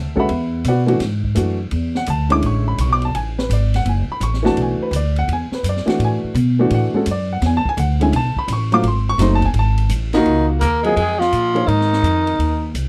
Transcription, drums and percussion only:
0.17 kick soft
0.29 ride medium
0.64 hi-hat pedal medium
0.64 ride medium
0.88 ride soft
1.00 snare soft
1.00 ride medium
1.24 kick medium
1.35 hi-hat pedal medium
1.35 ride medium
1.71 ride medium
1.95 snare soft
2.06 hi-hat pedal medium
2.06 ride medium
2.30 ride medium
2.42 ride medium
2.78 hi-hat pedal medium
2.78 ride medium
3.02 ride soft
3.15 ride medium
3.39 snare medium
3.51 hi-hat pedal medium
3.51 ride medium
3.74 snare soft
3.74 ride medium
3.86 ride medium
4.21 hi-hat pedal medium
4.21 ride medium
4.34 snare soft
4.46 snare soft
4.57 ride medium
4.93 hi-hat pedal medium
4.93 ride medium
5.16 ride soft
5.29 ride medium
5.52 snare soft
5.64 hi-hat pedal medium
5.64 ride medium
5.77 snare soft
5.88 snare soft
5.88 ride soft
6.00 ride medium
6.35 hi-hat pedal medium
6.35 ride medium
6.70 ride medium
7.06 hi-hat pedal medium
7.06 ride medium
7.42 snare soft
7.42 ride medium
7.65 kick medium
7.78 hi-hat pedal medium
7.78 ride medium
8.01 ride medium
8.13 ride medium
8.36 kick soft
8.48 hi-hat pedal medium
8.48 ride medium
8.72 ride soft
8.83 ride medium
9.19 snare soft
9.19 hi-hat pedal medium
9.19 ride medium
9.42 kick medium
9.42 ride soft
9.54 ride medium
9.78 ride medium
9.89 hi-hat pedal medium
9.89 ride medium
10.13 snare soft
10.13 ride soft
10.26 ride medium
10.61 hi-hat pedal medium
10.61 ride medium
10.84 ride soft
10.97 ride medium
11.21 snare soft
11.33 hi-hat pedal soft
11.33 ride medium
11.56 ride soft
11.68 ride medium
11.81 snare soft
11.93 snare soft
12.04 hi-hat pedal medium
12.04 ride medium
12.27 ride soft
12.40 ride medium
12.75 hi-hat pedal medium
12.75 ride medium

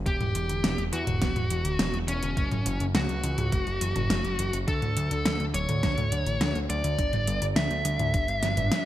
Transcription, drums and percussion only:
0.06 kick loud
0.06 closed hi-hat soft
0.21 closed hi-hat soft
0.21 mid tom medium
0.35 closed hi-hat medium
0.49 closed hi-hat soft
0.64 snare loud
0.64 closed hi-hat soft
0.78 closed hi-hat soft
0.93 closed hi-hat medium
1.07 closed hi-hat soft
1.07 mid tom medium
1.22 kick loud
1.22 snare medium
1.22 closed hi-hat soft
1.36 closed hi-hat soft
1.36 mid tom medium
1.50 closed hi-hat medium
1.65 closed hi-hat soft
1.79 snare loud
1.79 closed hi-hat soft
1.94 closed hi-hat soft
2.08 closed hi-hat medium
2.23 closed hi-hat soft
2.37 kick loud
2.37 closed hi-hat soft
2.51 closed hi-hat soft
2.51 mid tom medium
2.66 closed hi-hat medium
2.80 closed hi-hat soft
2.95 snare loud
2.95 closed hi-hat soft
3.09 closed hi-hat soft
3.24 closed hi-hat medium
3.38 closed hi-hat soft
3.38 mid tom medium
3.52 kick loud
3.52 closed hi-hat soft
3.67 closed hi-hat soft
3.81 closed hi-hat medium
3.96 closed hi-hat soft
3.96 mid tom medium
4.10 snare loud
4.10 closed hi-hat soft
4.25 closed hi-hat soft
4.39 closed hi-hat medium
4.53 closed hi-hat soft
4.68 kick loud
4.68 closed hi-hat medium
4.82 closed hi-hat soft
4.82 mid tom medium
4.97 closed hi-hat medium
5.11 closed hi-hat medium
5.26 snare loud
5.26 closed hi-hat medium
5.40 closed hi-hat soft
5.54 closed hi-hat medium
5.69 closed hi-hat soft
5.69 mid tom medium
5.83 kick loud
5.83 snare medium
5.83 closed hi-hat soft
5.98 closed hi-hat soft
5.98 mid tom medium
6.12 closed hi-hat medium
6.27 closed hi-hat soft
6.41 snare loud
6.41 closed hi-hat medium
6.55 closed hi-hat soft
6.70 closed hi-hat medium
6.84 closed hi-hat medium
6.99 kick loud
6.99 closed hi-hat medium
7.13 closed hi-hat soft
7.13 mid tom loud
7.27 closed hi-hat medium
7.42 closed hi-hat medium
7.56 snare loud
7.56 closed hi-hat medium
7.71 closed hi-hat soft
7.85 closed hi-hat medium
7.99 closed hi-hat soft
7.99 mid tom medium
8.14 kick loud
8.14 closed hi-hat medium
8.28 closed hi-hat soft
8.43 snare medium
8.43 closed hi-hat medium
8.57 closed hi-hat soft
8.57 mid tom medium
8.72 snare loud
8.72 closed hi-hat medium

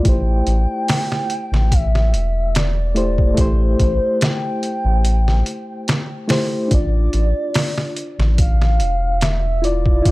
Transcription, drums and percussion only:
0.05 kick loud
0.05 closed hi-hat medium
0.47 closed hi-hat medium
0.88 snare loud
0.88 open hi-hat medium
1.12 snare soft
1.30 closed hi-hat medium
1.54 snare soft
1.72 kick loud
1.72 closed hi-hat medium
1.95 snare soft
2.14 closed hi-hat medium
2.55 snare loud
2.55 closed hi-hat medium
2.96 closed hi-hat medium
3.18 kick medium
3.37 kick loud
3.37 closed hi-hat medium
3.79 kick medium
3.79 closed hi-hat medium
4.21 snare loud
4.21 closed hi-hat medium
4.63 closed hi-hat medium
5.05 closed hi-hat medium
5.28 snare soft
5.46 closed hi-hat medium
5.88 snare loud
5.88 closed hi-hat medium
6.29 snare loud
6.29 open hi-hat medium
6.71 kick loud
6.71 closed hi-hat medium
7.13 closed hi-hat medium
7.54 snare loud
7.54 open hi-hat medium
7.78 snare medium
7.96 closed hi-hat medium
8.20 snare soft
8.38 kick loud
8.38 closed hi-hat medium
8.62 snare soft
8.80 closed hi-hat medium
9.21 snare loud
9.21 closed hi-hat medium
9.64 closed hi-hat medium
9.86 kick medium
10.05 kick loud
10.05 closed hi-hat medium

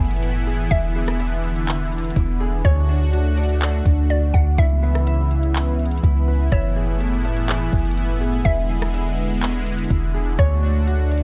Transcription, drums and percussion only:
0.05 closed hi-hat medium
0.11 closed hi-hat medium
0.17 closed hi-hat medium
0.23 closed hi-hat medium
0.71 kick loud
0.71 closed hi-hat medium
1.08 cross-stick loud
1.20 closed hi-hat medium
1.44 closed hi-hat medium
1.56 closed hi-hat medium
1.68 clap loud
1.68 closed hi-hat medium
1.92 closed hi-hat soft
1.98 closed hi-hat medium
2.04 closed hi-hat medium
2.10 closed hi-hat medium
2.16 kick loud
2.16 closed hi-hat medium
2.65 kick loud
2.65 closed hi-hat medium
3.13 closed hi-hat medium
3.37 closed hi-hat medium
3.43 closed hi-hat medium
3.49 closed hi-hat soft
3.55 closed hi-hat soft
3.62 clap loud
3.62 closed hi-hat medium
3.86 kick loud
3.86 closed hi-hat medium
4.10 closed hi-hat medium
4.34 kick medium
4.58 kick loud
4.58 closed hi-hat medium
4.95 cross-stick medium
5.07 closed hi-hat medium
5.31 closed hi-hat medium
5.43 closed hi-hat medium
5.55 clap loud
5.55 closed hi-hat medium
5.79 closed hi-hat soft
5.85 closed hi-hat medium
5.91 closed hi-hat medium
5.98 closed hi-hat medium
6.04 kick loud
6.04 closed hi-hat medium
6.52 kick loud
6.52 closed hi-hat medium
7.00 closed hi-hat medium
7.25 closed hi-hat medium
7.37 closed hi-hat medium
7.49 clap loud
7.49 closed hi-hat medium
7.73 kick medium
7.73 closed hi-hat soft
7.79 closed hi-hat medium
7.85 closed hi-hat medium
7.91 closed hi-hat medium
7.97 closed hi-hat medium
8.45 kick loud
8.45 closed hi-hat medium
8.82 cross-stick loud
8.94 closed hi-hat medium
9.18 closed hi-hat medium
9.30 closed hi-hat medium
9.42 clap loud
9.42 closed hi-hat medium
9.66 closed hi-hat soft
9.72 closed hi-hat medium
9.78 closed hi-hat medium
9.84 closed hi-hat medium
9.90 kick loud
9.90 closed hi-hat medium
10.39 kick loud
10.39 closed hi-hat medium
10.87 closed hi-hat medium
11.12 closed hi-hat medium
11.18 closed hi-hat medium

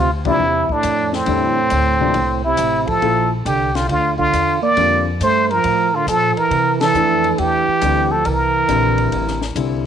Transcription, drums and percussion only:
0.25 kick medium
0.25 ride medium
0.69 kick medium
0.83 hi-hat pedal medium
0.83 ride medium
1.13 snare soft
1.26 ride medium
1.70 hi-hat pedal medium
1.70 ride medium
2.14 ride medium
2.57 hi-hat pedal medium
2.57 ride medium
2.87 kick soft
2.87 ride soft
3.02 ride medium
3.46 hi-hat pedal medium
3.46 ride medium
3.75 snare soft
3.75 ride soft
3.89 ride medium
4.19 kick soft
4.33 hi-hat pedal medium
4.33 ride medium
4.77 ride medium
5.21 hi-hat pedal medium
5.21 ride medium
5.51 ride soft
5.64 ride medium
6.08 hi-hat pedal medium
6.08 ride medium
6.37 ride soft
6.51 ride medium
6.81 snare medium
6.81 ride medium
6.94 hi-hat pedal soft
7.24 ride soft
7.38 ride medium
7.81 hi-hat pedal medium
7.81 ride medium
8.25 ride medium
8.69 hi-hat pedal medium
8.69 ride medium
8.98 ride soft
9.12 ride medium
9.28 snare soft
9.42 snare soft
9.56 hi-hat pedal medium
9.56 ride medium

